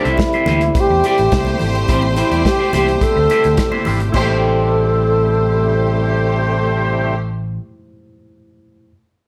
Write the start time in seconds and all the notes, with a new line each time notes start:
Already playing: C3 G3 A3 E4 G4 C5
0.01 D4 C5
0.05 C2 E4 G4, closed hi-hat
0.17 muted clean electric guitar stroke, kick, snare, closed hi-hat, muted conga
0.33 E4 G4 C5, closed hi-hat
0.46 D2 E4 G4 C5, closed hi-hat, muted conga, high conga, low conga
0.61 muted clean electric guitar stroke, closed hi-hat
0.75 A3 G4 C5, muted clean electric guitar stroke, kick, closed hi-hat, muted conga
0.80 G4
0.90 E2, muted clean electric guitar stroke
1.04 E4 G4 D5, closed hi-hat
1.08 G4
1.18 A1, muted clean electric guitar stroke, closed hi-hat
1.32 C2, muted clean electric guitar stroke, kick, snare, closed hi-hat, muted conga
1.45 muted clean electric guitar stroke, closed hi-hat, high conga
1.59 G#1, open hi-hat, low conga
1.75 muted clean electric guitar stroke, closed hi-hat
1.87 A1 B2 A3 E4 G4 C5 D5, kick, closed hi-hat, muted conga
1.92 C4
2.02 muted clean electric guitar stroke, high conga
2.16 A3 E4 G4 C5, closed hi-hat, muted conga
2.31 E2 E4 G4 D5, closed hi-hat
2.45 G4, muted clean electric guitar stroke, kick, snare, closed hi-hat
2.59 E4 G4 C5
2.73 C2 E4 G4 C5, closed hi-hat, high conga, low conga
2.88 muted clean electric guitar stroke, closed hi-hat
3.01 A4, muted clean electric guitar stroke, kick, closed hi-hat
3.16 D2, muted clean electric guitar stroke
3.30 E4 G4 C5, closed hi-hat, muted conga
3.44 D2, muted clean electric guitar stroke, closed hi-hat
3.57 muted clean electric guitar stroke, kick, snare, closed hi-hat, muted conga
3.72 E4 G4 C5, high conga
3.85 G#1 E4 G4 C5, open hi-hat, muted conga, low conga
4.00 muted clean electric guitar stroke, closed hi-hat
4.10 C3 G3 A3 E4, crash, high conga
4.14 A1 A3 C4 G4 A4 C5, kick